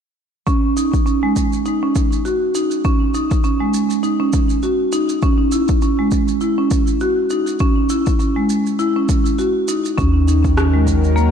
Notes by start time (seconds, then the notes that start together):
0.47 C#4, kick, shaker
0.77 D#4, shaker
0.94 kick, shaker
1.06 C#4, shaker
1.23 G#3
1.36 kick, shaker
1.53 shaker
1.66 D#4, shaker
1.83 C#4
1.95 kick, shaker
2.12 shaker
2.25 F#4, shaker
2.55 D#4, shaker
2.71 shaker
2.84 C#4, kick, shaker
3.14 D#4, shaker
3.31 kick, shaker
3.44 C#4, shaker
3.60 G#3
3.74 shaker
3.90 shaker
4.03 D#4, shaker
4.20 C#4
4.33 kick, shaker
4.50 shaker
4.63 F#4, shaker
4.92 D#4, shaker
5.09 shaker
5.22 C#4, kick, shaker
5.52 E4, shaker
5.68 kick, shaker
5.82 C#4, shaker
5.99 G#3
6.11 kick, shaker
6.28 shaker
6.41 E4, shaker
6.58 C#4
6.71 kick, shaker
6.87 shaker
7.00 F#4, shaker
7.30 D#4, shaker
7.47 shaker
7.59 C#4, kick, shaker
7.89 E4, shaker
8.06 kick, shaker
8.19 C#4, shaker
8.36 G#3
8.50 shaker
8.66 shaker
8.79 E4, shaker
8.96 C#4
9.09 kick, shaker
9.26 shaker
9.39 F#4, shaker
9.68 D#4, shaker
9.85 shaker
9.97 D#2 D#3 C#4, kick, shaker
10.20 F#4
10.28 F#3 D#4 A#4, shaker
10.44 kick, shaker
10.57 C#4, cross-stick, shaker
10.74 G#3
10.87 kick, shaker
10.91 A#3
11.04 shaker
11.16 A#3, shaker